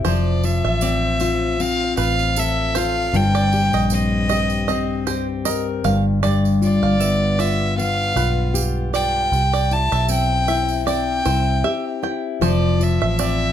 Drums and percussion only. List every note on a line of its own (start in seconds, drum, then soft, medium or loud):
0.05 tambourine soft
0.43 tambourine soft
0.81 tambourine medium
1.20 tambourine medium
1.60 tambourine soft
1.97 tambourine medium
2.19 tambourine soft
2.36 tambourine medium
2.75 tambourine medium
3.14 tambourine soft
3.35 tambourine soft
3.53 tambourine soft
3.73 tambourine soft
3.90 tambourine medium
4.29 tambourine soft
4.50 tambourine soft
4.69 tambourine soft
5.07 tambourine medium
5.45 tambourine medium
5.84 tambourine medium
6.24 tambourine soft
6.45 tambourine soft
6.62 tambourine soft
7.01 tambourine medium
7.39 tambourine medium
7.79 tambourine soft
8.17 tambourine medium
8.55 tambourine medium
8.94 tambourine medium
9.33 tambourine soft
9.54 tambourine soft
9.71 tambourine soft
9.92 tambourine soft
10.09 tambourine medium
10.48 tambourine soft
10.69 tambourine soft
10.87 tambourine soft
11.25 tambourine medium
12.43 tambourine soft
12.81 tambourine soft
13.19 tambourine medium